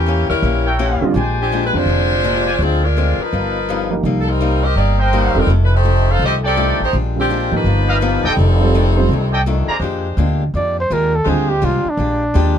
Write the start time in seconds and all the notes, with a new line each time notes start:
Already playing: E2 E3 A#3 C#4 G4
0.06 E3 A#3 C#4 G4
0.29 D#2 G3 C#4 E4 A#4
0.42 A#1 E3 A#3 C#4 G4
0.65 A#4 C#5 E5 G5
0.79 E3 A#3 C#4 G4
1.01 D3 G3 C4 F4, muted upright bass stroke
1.14 A#1 A#2 G#3 D4 G4 C5 D5 G5 G#5
1.41 F3 C4 D4 G4
1.52 A#2 G#3 D4 G4
1.66 B4
1.73 F2 D3 G#3 C4 D4 F4 G4 C5
1.86 F1 A#2 G#3 D4 G4
2.24 A#2 G#3 D4 G4
2.46 C5 D5 F5 G#5
2.59 D2 D3 F3 G#3 C4 D4 G#4
2.63 F4
2.84 G#3 D4 F4 A#4
2.97 D3 G#3 C4 F4
3.18 F3 D#4 A#4 B4, muted upright bass stroke
3.32 G1 G2 F3 B3 D#4
3.69 G2 F3 B3 D#4
3.90 F3 A#3 D#4 G4
4.03 C2 C3 F3 G3 A#3 D#4 G4
4.20 A4
4.28 G3 C4 D#4 A#4
4.41 C3 G3 A#3 D#4
4.63 C4 G4 A#4 D#5
4.76 G1 C3 G3 A#3 D#4 G4 D5
4.99 A#3 D#4 G4 A#4 C5 D#5 G5
5.13 C3 G3 A#3 D#4
5.35 E1 G3 C4 D#4 F4 A4 A#4
5.47 F1 F2 D#3 A3 D4
5.64 B4
5.75 A3 D#4 G4 C5
5.84 F2 D#3 A3 D4
6.11 D#4 A4 C5 F5
6.19 C2 F2 D#3 A3 D4
6.25 C4 G4 A4 D#5
6.43 D#4 G4 A4 D5 G5
6.47 C4
6.56 F2 D#3 A3 D4
6.80 A1 A3 D#4
6.84 G4 C5
6.93 A#1 A#2 G#3 D4 G4
7.15 D3 G3 C4 F4
7.20 F3 C4 D4 G4
7.30 A#2 G#3 D4 G4
7.51 G#1 F3 A#3 D#4 G4
7.56 B4
7.64 G1 G2 F3 B3 D#4
7.87 G4 B4 D#5 F5
8.01 G2 F3 B3 D#4
8.24 E1 G3 C4 D#4 A4 D5 D#5 G5
8.37 F1 F2 D#3 A3 D4
8.60 G3 C4 F4 A4
8.74 F2 D#3 A3 D4
8.96 G3 C4 F4 C5
9.09 C2 F2 D#3
9.13 A3 D4
9.33 A4 D5 D#5 G5
9.46 F2 D#3 A3 D4
9.67 A#3 G#4 C5 D5 A#5, muted upright bass stroke
9.78 F2 A#2 G#3 D4 G4 C5
9.82 G#3 D4 G4
10.17 D2 A#2 G#3 D4 G4
10.54 F2 A#2 G#3 D4 G4 D5
10.80 C5
10.90 D#2 A#2 G#3 D4 G4 A#4
11.15 A4
11.24 D2 A#2 D3 G3 G#3 C4 D4 F4 G4 C5
11.29 G#4
11.49 G4
11.61 C2 A#2 G#3 D4 F4 G4
11.85 muted upright bass stroke
11.90 D4
11.97 A#1 A#2 G#3 D4 G4
12.34 D#2 A#2 G#3 D4 G4